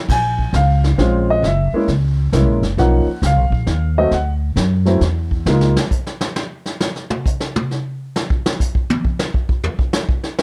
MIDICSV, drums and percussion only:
0, 0, Header, 1, 2, 480
1, 0, Start_track
1, 0, Key_signature, -5, "minor"
1, 0, Tempo, 447761
1, 98, Time_signature, 3, 2, 24, 8
1, 11173, End_track
2, 0, Start_track
2, 0, Title_t, "Drums"
2, 93, Note_on_c, 9, 36, 70
2, 100, Note_on_c, 9, 25, 44
2, 100, Note_on_c, 9, 38, 42
2, 100, Note_on_c, 9, 49, 71
2, 200, Note_off_c, 9, 36, 0
2, 207, Note_off_c, 9, 38, 0
2, 207, Note_off_c, 9, 49, 0
2, 414, Note_on_c, 9, 36, 50
2, 521, Note_off_c, 9, 36, 0
2, 572, Note_on_c, 9, 36, 25
2, 573, Note_on_c, 9, 44, 46
2, 575, Note_on_c, 9, 38, 59
2, 680, Note_off_c, 9, 36, 0
2, 680, Note_off_c, 9, 44, 0
2, 682, Note_off_c, 9, 38, 0
2, 900, Note_on_c, 9, 38, 39
2, 1007, Note_off_c, 9, 38, 0
2, 1055, Note_on_c, 9, 36, 21
2, 1058, Note_on_c, 9, 38, 43
2, 1162, Note_off_c, 9, 36, 0
2, 1165, Note_off_c, 9, 38, 0
2, 1536, Note_on_c, 9, 36, 22
2, 1540, Note_off_c, 9, 25, 0
2, 1540, Note_on_c, 9, 25, 44
2, 1540, Note_on_c, 9, 38, 44
2, 1643, Note_off_c, 9, 36, 0
2, 1647, Note_off_c, 9, 38, 0
2, 2014, Note_on_c, 9, 36, 20
2, 2015, Note_on_c, 9, 38, 45
2, 2121, Note_off_c, 9, 36, 0
2, 2122, Note_off_c, 9, 38, 0
2, 2496, Note_on_c, 9, 36, 23
2, 2496, Note_on_c, 9, 44, 55
2, 2498, Note_on_c, 9, 38, 62
2, 2603, Note_off_c, 9, 36, 0
2, 2603, Note_off_c, 9, 44, 0
2, 2605, Note_off_c, 9, 38, 0
2, 2818, Note_on_c, 9, 38, 39
2, 2925, Note_off_c, 9, 38, 0
2, 2976, Note_on_c, 9, 36, 24
2, 2981, Note_off_c, 9, 25, 0
2, 2981, Note_on_c, 9, 25, 42
2, 2981, Note_on_c, 9, 38, 42
2, 3083, Note_off_c, 9, 36, 0
2, 3088, Note_off_c, 9, 38, 0
2, 3456, Note_on_c, 9, 36, 19
2, 3456, Note_on_c, 9, 44, 55
2, 3458, Note_on_c, 9, 38, 62
2, 3563, Note_off_c, 9, 36, 0
2, 3563, Note_off_c, 9, 44, 0
2, 3565, Note_off_c, 9, 38, 0
2, 3776, Note_on_c, 9, 36, 62
2, 3884, Note_off_c, 9, 36, 0
2, 3930, Note_on_c, 9, 38, 45
2, 3933, Note_on_c, 9, 36, 20
2, 4037, Note_off_c, 9, 38, 0
2, 4041, Note_off_c, 9, 36, 0
2, 4411, Note_off_c, 9, 25, 0
2, 4411, Note_on_c, 9, 25, 48
2, 4411, Note_on_c, 9, 38, 43
2, 4414, Note_on_c, 9, 36, 26
2, 4518, Note_off_c, 9, 38, 0
2, 4521, Note_off_c, 9, 36, 0
2, 4892, Note_on_c, 9, 44, 51
2, 4893, Note_on_c, 9, 36, 21
2, 4894, Note_on_c, 9, 38, 65
2, 4999, Note_off_c, 9, 44, 0
2, 5000, Note_off_c, 9, 36, 0
2, 5001, Note_off_c, 9, 38, 0
2, 5212, Note_on_c, 9, 38, 42
2, 5319, Note_off_c, 9, 38, 0
2, 5369, Note_on_c, 9, 38, 45
2, 5372, Note_on_c, 9, 36, 20
2, 5476, Note_off_c, 9, 38, 0
2, 5479, Note_off_c, 9, 36, 0
2, 5694, Note_on_c, 9, 36, 55
2, 5801, Note_off_c, 9, 36, 0
2, 5856, Note_on_c, 9, 38, 91
2, 5963, Note_off_c, 9, 38, 0
2, 6013, Note_on_c, 9, 38, 54
2, 6120, Note_off_c, 9, 38, 0
2, 6180, Note_on_c, 9, 38, 100
2, 6287, Note_off_c, 9, 38, 0
2, 6336, Note_on_c, 9, 36, 79
2, 6336, Note_on_c, 9, 44, 56
2, 6369, Note_off_c, 9, 25, 0
2, 6443, Note_off_c, 9, 36, 0
2, 6443, Note_off_c, 9, 44, 0
2, 6502, Note_on_c, 9, 38, 50
2, 6609, Note_off_c, 9, 38, 0
2, 6655, Note_on_c, 9, 38, 101
2, 6762, Note_off_c, 9, 38, 0
2, 6818, Note_on_c, 9, 38, 89
2, 6925, Note_off_c, 9, 38, 0
2, 7135, Note_on_c, 9, 38, 50
2, 7243, Note_off_c, 9, 38, 0
2, 7295, Note_on_c, 9, 38, 94
2, 7402, Note_off_c, 9, 38, 0
2, 7457, Note_on_c, 9, 38, 37
2, 7564, Note_off_c, 9, 38, 0
2, 7615, Note_on_c, 9, 47, 92
2, 7722, Note_off_c, 9, 47, 0
2, 7779, Note_on_c, 9, 36, 83
2, 7779, Note_on_c, 9, 44, 58
2, 7886, Note_off_c, 9, 36, 0
2, 7886, Note_off_c, 9, 44, 0
2, 7937, Note_on_c, 9, 38, 51
2, 8044, Note_off_c, 9, 38, 0
2, 8103, Note_on_c, 9, 47, 101
2, 8210, Note_off_c, 9, 47, 0
2, 8264, Note_on_c, 9, 38, 33
2, 8371, Note_off_c, 9, 38, 0
2, 8745, Note_on_c, 9, 38, 93
2, 8853, Note_off_c, 9, 38, 0
2, 8901, Note_on_c, 9, 36, 87
2, 9008, Note_off_c, 9, 36, 0
2, 9068, Note_on_c, 9, 38, 99
2, 9175, Note_off_c, 9, 38, 0
2, 9221, Note_on_c, 9, 36, 78
2, 9221, Note_on_c, 9, 44, 58
2, 9328, Note_off_c, 9, 36, 0
2, 9328, Note_off_c, 9, 44, 0
2, 9380, Note_on_c, 9, 36, 80
2, 9487, Note_off_c, 9, 36, 0
2, 9541, Note_on_c, 9, 48, 103
2, 9648, Note_off_c, 9, 48, 0
2, 9698, Note_on_c, 9, 36, 71
2, 9805, Note_off_c, 9, 36, 0
2, 9855, Note_on_c, 9, 38, 101
2, 9963, Note_off_c, 9, 38, 0
2, 10016, Note_on_c, 9, 36, 77
2, 10123, Note_off_c, 9, 36, 0
2, 10174, Note_on_c, 9, 36, 77
2, 10281, Note_off_c, 9, 36, 0
2, 10329, Note_on_c, 9, 43, 109
2, 10436, Note_off_c, 9, 43, 0
2, 10493, Note_on_c, 9, 36, 79
2, 10600, Note_off_c, 9, 36, 0
2, 10645, Note_on_c, 9, 44, 55
2, 10647, Note_on_c, 9, 38, 108
2, 10752, Note_off_c, 9, 44, 0
2, 10754, Note_off_c, 9, 38, 0
2, 10813, Note_on_c, 9, 36, 85
2, 10920, Note_off_c, 9, 36, 0
2, 10971, Note_on_c, 9, 38, 40
2, 11079, Note_off_c, 9, 38, 0
2, 11133, Note_on_c, 9, 38, 104
2, 11173, Note_off_c, 9, 38, 0
2, 11173, End_track
0, 0, End_of_file